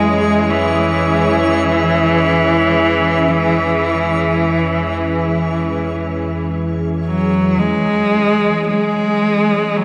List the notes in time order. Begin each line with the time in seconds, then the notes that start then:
Already playing: F2 E3 G#3 C#4 E4 G#4 C#5
0.50 E3
7.06 F#3
7.59 E3 G#3 C#4 C#5
8.69 G#3
9.77 F#3